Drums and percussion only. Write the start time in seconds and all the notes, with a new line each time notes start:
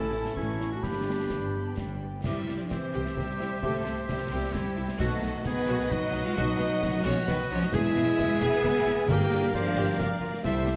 0.25 snare
0.37 concert bass drum
0.61 snare
0.83 concert bass drum, snare
1.30 concert bass drum, snare
1.77 concert bass drum, snare
2.24 concert bass drum, snare, crash
2.48 snare
2.71 concert bass drum, snare
3.06 snare
3.17 concert bass drum
3.40 snare
3.63 concert bass drum
3.85 snare
4.09 concert bass drum, snare
4.54 concert bass drum, snare
4.88 snare
5.00 concert bass drum, snare, crash
5.23 snare
5.46 concert bass drum, snare
5.80 snare
5.92 concert bass drum
6.14 snare
6.37 concert bass drum
6.60 snare
6.83 concert bass drum, snare
7.28 concert bass drum, snare
7.63 snare
7.74 concert bass drum, snare, crash
7.97 snare
8.19 concert bass drum, snare
8.53 snare
8.64 concert bass drum
8.87 snare
9.09 concert bass drum
9.31 snare
9.54 concert bass drum, snare
10.00 concert bass drum, snare
10.34 snare
10.44 concert bass drum, snare, crash
10.67 snare